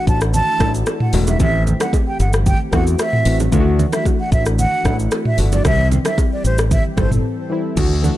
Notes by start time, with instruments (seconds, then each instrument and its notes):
Already playing: synth keys E3 A3 D4 F#4
0.07 fingered electric bass A1, flute A5, kick, shaker
0.21 cross-stick, shaker
0.34 flute A5, low conga, shaker
0.59 fingered electric bass A1, synth keys E3 A3 D4 E4, kick, cross-stick, low bongo, shaker
0.74 shaker
0.86 cross-stick, high bongo, shaker
1.00 flute F#5, mid tom
1.12 fingered electric bass E1, synth keys E3 A3 D4 F#4, open hi-hat, shaker
1.27 flute E5, high bongo, low bongo, shaker
1.39 fingered electric bass A1, synth keys E3 A3 C4 G4, flute E5, kick, low conga, shaker
1.67 low bongo, low conga, shaker
1.80 flute F#5, cross-stick, low bongo, shaker
1.93 kick, high bongo, shaker
2.08 flute G5
2.20 fingered electric bass G1, flute F#5, shaker
2.33 cross-stick, shaker
2.46 flute G5, kick, low conga, shaker
2.71 fingered electric bass E2, synth keys E3 A3 C4 F#4, flute F#5, kick, cross-stick, low bongo, shaker
2.87 shaker
2.99 flute E5, cross-stick, high bongo, shaker
3.13 mid tom
3.25 fingered electric bass A1, synth keys E3 A3 C4 F#4, open hi-hat, shaker
3.40 high bongo, low bongo, shaker
3.52 fingered electric bass D2, synth keys E3 A3 D4 F4, kick, low conga, shaker
3.60 synth keys F#4
3.79 low bongo, low conga, shaker
3.92 flute E5, cross-stick, low bongo, shaker
4.05 kick, high bongo, shaker
4.20 flute F#5
4.32 fingered electric bass A1, flute E5, kick, shaker
4.46 cross-stick, shaker
4.59 flute F#5, low conga, shaker
4.84 fingered electric bass A1, synth keys E3 A3 D4 E4, kick, cross-stick, low bongo, shaker
4.99 shaker
5.11 cross-stick, high bongo, shaker
5.25 flute E5, mid tom
5.37 fingered electric bass G1, synth keys E3 A3 D4 F#4, open hi-hat, shaker
5.52 flute D5, high bongo, low bongo, shaker
5.64 fingered electric bass C2, synth keys E3 G3 C4 G4, flute E5, kick, cross-stick, low conga, shaker
5.92 low bongo, low conga, shaker
6.05 flute E5, cross-stick, low bongo, shaker
6.18 kick, high bongo, shaker
6.33 flute D5
6.44 fingered electric bass A1, flute C5, shaker
6.58 cross-stick, high bongo, shaker
6.71 flute E5, kick, low conga, shaker
6.96 fingered electric bass G1, synth keys E3 G3 C4 A4, flute C5, kick, cross-stick, mid tom, low bongo, shaker
7.11 mid tom, shaker
7.50 synth keys E3 G3 C4 E4
7.76 fingered electric bass D2, synth keys E3 A3 D4 F#4, kick, crash, low conga, shaker
8.02 synth keys E3 A3 D4 F#4, low bongo, low conga, shaker